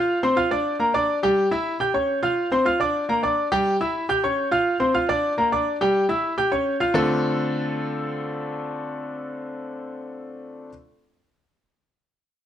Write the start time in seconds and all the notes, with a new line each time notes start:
Already playing: F4 F5 F6
0.23 C4 C5 C6
0.36 F4 F5 F6
0.51 D4 D5 D6
0.79 A#3 A#4 A#5
0.94 D4 D5 D6
1.23 G3 G4 G5
1.51 E4 E5 E6
1.80 G4 G5 G6
1.94 C#4 C#5 C#6
2.23 F4 F5 F6
2.52 C4 C5 C6
2.65 F4 F5 F6
2.80 D4 D5 D6
3.09 A#3 A#4 A#5
3.23 D4 D5 D6
3.52 G3 G4 G5
3.81 E4 E5 E6
4.09 G4 G5 G6
4.23 C#4 C#5 C#6
4.51 F4 F5 F6
4.80 C4 C5 C6
4.94 F4 F5 F6
5.09 D4 D5 D6
5.38 A#3 A#4 A#5
5.52 D4 D5 D6
5.81 G3 G4 G5
6.09 E4 E5 E6
6.38 G4 G5 G6
6.51 C#4 C#5 C#6
6.80 F4 F5 F6
6.94 D3 A3 C4 D4 F4 A4